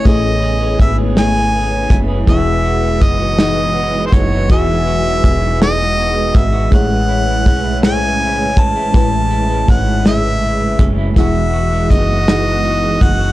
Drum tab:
HH |x-xx-x|x-xx-x|x-xx-x|x-xx-x|
SD |---o--|---o--|---o--|---o--|
BD |o-o--o|o-o--o|o-o--o|o-o--o|

HH |x-xx-x|x-xx-x|
SD |---o--|---o--|
BD |o-o--o|o-o--o|